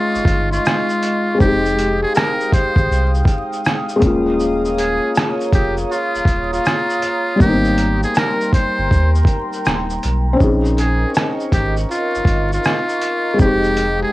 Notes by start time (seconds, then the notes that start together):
Already playing: G#3 C4 C#4 D#4 F4 G#4 D#5 C6 C#6
0.15 G1, shaker
0.25 G1, kick, closed hi-hat, shaker
0.52 F4, shaker
0.65 cross-stick, shaker
0.90 shaker
1.03 closed hi-hat, shaker
1.35 G#3 C4
1.40 F1 D#4 G4 F5 G5 D#6, kick, shaker
1.45 G4
1.65 shaker
1.79 closed hi-hat, shaker
2.03 G#4
2.15 A#4, cross-stick, shaker
2.41 shaker
2.53 C5, kick, closed hi-hat, shaker
2.76 G#1, kick, shaker
2.91 C2, shaker
3.15 shaker
3.25 kick, closed hi-hat, shaker
3.53 shaker
3.65 cross-stick, shaker
3.89 shaker
3.96 G#3 A#3
4.02 D#1 C#4 C#5 A#5, kick, closed hi-hat, shaker
4.07 F4
4.40 shaker
4.65 shaker
4.78 G#4, closed hi-hat, shaker
5.15 cross-stick, shaker
5.41 shaker
5.53 F1 G4, kick, closed hi-hat, shaker
5.77 shaker
5.91 F4, shaker
6.15 D#1, shaker
6.25 D#1, kick, closed hi-hat, shaker
6.53 F4, shaker
6.65 cross-stick, shaker
6.90 shaker
7.02 closed hi-hat, shaker
7.36 G3 A#3
7.40 G#1 B3 G4 A#4 G5 C6, kick, shaker
7.46 C4 D#4
7.65 shaker
7.78 closed hi-hat, shaker
8.03 G#4, shaker
8.15 A#4, cross-stick, shaker
8.41 shaker
8.53 C5, kick, closed hi-hat, shaker
8.78 G1
8.91 D#2, kick, shaker
9.15 shaker
9.25 kick, closed hi-hat, shaker
9.53 shaker
9.65 D#1, cross-stick, shaker
9.90 shaker
10.03 B1, closed hi-hat, shaker
10.33 C4 C#4
10.40 A#1 D#4 G#4 A#4 D#5 C#6, kick, shaker
10.65 shaker
10.78 G#4, closed hi-hat, shaker
11.14 cross-stick, shaker
11.40 shaker
11.52 G#1 G4, kick, closed hi-hat, shaker
11.77 shaker
11.91 F4, shaker
12.15 G1, shaker
12.25 G1, kick, closed hi-hat, shaker
12.53 F4, shaker
12.64 cross-stick, shaker
12.89 shaker
13.02 closed hi-hat, shaker
13.34 G#3 C4
13.39 F1 G#3 D#4 G4 F5 G5 D#6, kick, shaker
13.45 G4
13.64 shaker
13.77 closed hi-hat, shaker
14.02 G#4